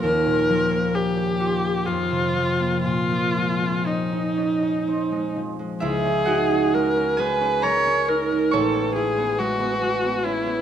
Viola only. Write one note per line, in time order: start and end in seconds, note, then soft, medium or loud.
0.03 0.96 A#4 medium
0.94 1.88 G4 medium
1.86 2.83 F4 medium
2.84 3.89 F4 medium
3.87 5.36 D#4 soft
5.83 6.76 G#4 medium
6.74 7.21 A#4 medium
7.19 7.65 B4 medium
7.64 8.10 C#5 medium
8.08 8.55 A#4 medium
8.54 8.94 A4 medium
8.95 9.40 G#4 medium
9.39 10.26 F#4 medium
10.25 10.62 E4 medium